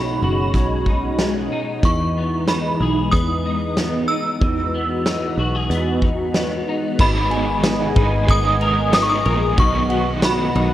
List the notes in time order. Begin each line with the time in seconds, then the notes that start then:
Already playing: B1 B2 G#3 C#4 D#4 F#4 B5
0.22 F#1 F#4
0.54 B1 G#3, kick, closed hi-hat
0.86 D#4, kick
1.19 G#3, snare, closed hi-hat
1.52 D#4
1.82 E2 E3 B3 C#6, kick, closed hi-hat
2.17 B3
2.48 D#4 B5, snare, closed hi-hat
2.80 B1 G#4
3.11 E2 B3 D#6, kick, closed hi-hat
3.45 D#4
3.77 B3, snare, closed hi-hat
4.08 D#4 E6
4.41 E2 E3 F#4, kick, closed hi-hat
4.74 B3
5.06 D#4, snare, closed hi-hat
5.37 B1 F#4
5.55 G#4
5.70 E2 B3, closed hi-hat
6.02 D#4, kick
6.35 B3, snare, closed hi-hat
6.68 D#4
6.99 G#1 G#2 D#3 G#3 B3 D#4 G#4 D#5 G#5 B5, kick, crash
7.31 B3 G#5, ride
7.64 snare, ride, tambourine
7.96 G#1 G#3 B3 D#4, kick, ride
8.27 G#1 G#3 B3 D#4 D#6, kick, ride
8.31 A#4
8.61 A#4, ride
8.92 G#3 B3 D#4 A#4 D#6, snare, ride, tambourine
9.03 C#6
9.09 D#6
9.25 A#1 A#4, ride
9.57 B1 B2 D#3 F#3 B3 F#4 F#5 C#6, kick, ride
9.62 D#4
9.89 B3 F#5, ride
10.22 B5, snare, ride, tambourine
10.55 B1 D#4, ride